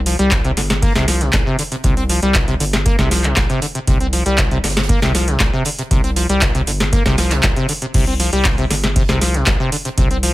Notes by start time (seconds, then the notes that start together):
Already playing: C2
0.06 F3, closed hi-hat, open hi-hat
0.19 C2 G3, closed hi-hat
0.31 A#2, kick, snare, clap, closed hi-hat
0.45 C3, closed hi-hat
0.57 G1 D3, snare, closed hi-hat, open hi-hat
0.70 C3, snare, closed hi-hat
0.82 A#3, kick, closed hi-hat, open hi-hat
0.95 C2 C3, snare, closed hi-hat
1.08 F3, snare, closed hi-hat, open hi-hat
1.21 C3, snare, closed hi-hat
1.33 C2 A#2, kick, snare, clap, closed hi-hat
1.46 C3
1.59 D3, closed hi-hat, open hi-hat
1.72 C3, closed hi-hat
1.84 C2 C3, kick, closed hi-hat
1.97 C4, closed hi-hat
2.09 F3, closed hi-hat, open hi-hat
2.22 C2 G3, closed hi-hat
2.34 A#2, kick, snare, clap, closed hi-hat
2.48 C3, closed hi-hat
2.60 G1 D3, closed hi-hat, open hi-hat
2.73 C3, snare, closed hi-hat
2.86 A#3, kick, closed hi-hat
2.99 C2 C3, kick, snare
3.11 F3, snare, closed hi-hat, open hi-hat
3.24 C3, clap, closed hi-hat
3.36 C2 A#2, kick, snare, clap, closed hi-hat
3.49 C3, snare, closed hi-hat
3.62 D3, closed hi-hat, open hi-hat
3.75 C3, closed hi-hat
3.87 C2 C3, kick, closed hi-hat
4.00 C4, closed hi-hat
4.13 F3, closed hi-hat, open hi-hat
4.26 C2 G3, closed hi-hat
4.38 A#2, kick, snare, clap, closed hi-hat
4.51 C3, closed hi-hat
4.64 G1 D3, snare, closed hi-hat, open hi-hat
4.70 snare, closed hi-hat
4.77 C3, snare, closed hi-hat
4.83 snare, closed hi-hat
4.89 A#3, kick, closed hi-hat
5.02 C2 C3, snare, closed hi-hat
5.15 F3, snare, closed hi-hat, open hi-hat
5.28 C3, snare, closed hi-hat
5.40 C2 A#2, kick, snare, clap, closed hi-hat
5.53 C3
5.65 D3, closed hi-hat, open hi-hat
5.79 C3, closed hi-hat
5.91 C2 C3, kick, closed hi-hat
6.04 C4, closed hi-hat
6.16 F3, closed hi-hat, open hi-hat
6.29 C2 G3, closed hi-hat
6.41 A#2, kick, snare, clap, closed hi-hat
6.55 C3, closed hi-hat
6.67 G1 D3, closed hi-hat, open hi-hat
6.80 C3, snare, closed hi-hat
6.93 A#3, kick, snare, closed hi-hat
7.05 C2 C3, kick, snare, closed hi-hat
7.18 F3, snare, closed hi-hat, open hi-hat
7.31 C3, snare, clap, closed hi-hat
7.43 C2 A#2, kick, snare, clap, closed hi-hat
7.56 C3, closed hi-hat
7.69 D3, closed hi-hat, open hi-hat
7.82 C3, closed hi-hat
7.94 C2 C3, kick, closed hi-hat, crash
8.07 C4, closed hi-hat
8.20 F3, closed hi-hat, open hi-hat
8.33 C2 G3, closed hi-hat
8.45 A#2, kick, snare, clap, closed hi-hat
8.58 C3, closed hi-hat
8.70 G1 D3, snare, closed hi-hat, open hi-hat
8.84 C3, snare, closed hi-hat
8.96 C3, kick, closed hi-hat, open hi-hat
9.08 C2 C3, snare, closed hi-hat
9.21 F3, snare, closed hi-hat, open hi-hat
9.34 C3, snare, closed hi-hat
9.46 C2 A#2, kick, snare, clap, closed hi-hat
9.60 C3
9.72 D3, closed hi-hat, open hi-hat
9.85 C3, closed hi-hat
9.98 C2 C3, kick, closed hi-hat
10.11 C4, closed hi-hat
10.23 F3, closed hi-hat, open hi-hat